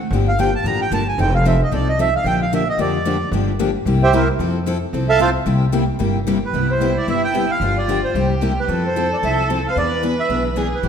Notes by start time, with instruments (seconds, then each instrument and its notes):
0.11 upright bass G1, steel-string acoustic guitar D3 F3 A#3 D4 G4
0.28 accordion F5
0.39 steel-string acoustic guitar D3 F3 A#3 D4 G4, accordion G5
0.55 accordion A5
0.64 upright bass A1, steel-string acoustic guitar D3 F3 A#3 D4 G4, accordion A#5
0.82 accordion G5
0.91 upright bass G1, steel-string acoustic guitar D3 F3 A#3 D4 G4, accordion A5
1.08 accordion G#5
1.18 upright bass F1, steel-string acoustic guitar F3 C4 D#4 A4, accordion G5
1.35 accordion F5
1.45 steel-string acoustic guitar F3 C4 D#4 A4, accordion E5
1.63 accordion D#5
1.72 upright bass C2, steel-string acoustic guitar F3 C4 D#4 A4, accordion D5
1.89 accordion D#5
1.99 steel-string acoustic guitar F3 C4 D#4 A4, accordion E5
2.16 accordion F5
2.24 upright bass A#1, steel-string acoustic guitar D3 F3 A#3 D4 G4, accordion G5
2.42 accordion F5
2.53 steel-string acoustic guitar D3 F3 A#3 D4 G4, accordion E5
2.69 accordion D#5
2.78 upright bass F2, steel-string acoustic guitar D3 F3 A#3 D4 G4, accordion D5
3.06 steel-string acoustic guitar D3 F3 A#3 D4 G4
3.32 upright bass G1, steel-string acoustic guitar D3 F3 A#3 D4 G4
3.60 steel-string acoustic guitar D3 F3 A#3 D4 G4
3.85 upright bass C2, steel-string acoustic guitar C3 G3 A#3 E4 G4
4.03 accordion G4 C5 E5 G5
4.13 steel-string acoustic guitar C3 G3 A#3 E4 G4, accordion E4 A#4 C5 E5
4.39 upright bass F2, steel-string acoustic guitar F3 C4 E4 A4
4.66 steel-string acoustic guitar F3 C4 E4 A4
4.93 upright bass C2, steel-string acoustic guitar F3 C4 E4 A4
5.09 accordion A4 E5 F5 A5
5.19 steel-string acoustic guitar F3 C4 E4 A4, accordion F4 A4 C5 F5
5.46 upright bass C2, steel-string acoustic guitar C3 G3 A#3 E4 G4
5.73 steel-string acoustic guitar C3 G3 A#3 E4 G4
6.00 upright bass G1, steel-string acoustic guitar C3 G3 A#3 E4 G4
6.27 steel-string acoustic guitar C3 G3 A#3 E4 G4
6.46 accordion B4
6.53 upright bass C2, steel-string acoustic guitar C3 G3 B3 E4 G4, violin E4
6.71 accordion C5
6.80 steel-string acoustic guitar C3 G3 B3 E4 G4
6.97 accordion D5
7.07 upright bass G1, steel-string acoustic guitar C3 G3 B3 E4 G4, accordion E5
7.24 accordion G5
7.34 steel-string acoustic guitar C3 G3 B3 E4 G4
7.51 accordion F5
7.60 upright bass G1, steel-string acoustic guitar D3 F3 A#3 D4 G4, violin F4
7.78 accordion D5
7.87 steel-string acoustic guitar D3 F3 A#3 D4 G4
8.04 accordion C5
8.14 upright bass C2, steel-string acoustic guitar C3 G3 A#3 E4 G4, violin G4
8.42 steel-string acoustic guitar C3 G3 A#3 E4 G4
8.60 accordion B4
8.68 upright bass F2, steel-string acoustic guitar F3 C4 E4 A4, violin A4
8.87 accordion C5
8.96 steel-string acoustic guitar F3 C4 E4 A4
9.13 accordion D5
9.23 upright bass C2, steel-string acoustic guitar F3 C4 E4 A4, accordion E5
9.50 steel-string acoustic guitar F3 C4 E4 A4
9.68 violin C5, accordion F5
9.76 upright bass E2, steel-string acoustic guitar E3 B3 D4 G#4 B4, violin B4, accordion D5
10.03 steel-string acoustic guitar E3 B3 D4 G#4 B4
10.20 accordion E5
10.29 upright bass B1, steel-string acoustic guitar E3 B3 D4 G#4 B4
10.56 steel-string acoustic guitar E3 B3 D4 G#4 B4, violin G#4
10.74 accordion B4
10.83 upright bass A1, steel-string acoustic guitar E3 G3 C4 E4 A4, violin G4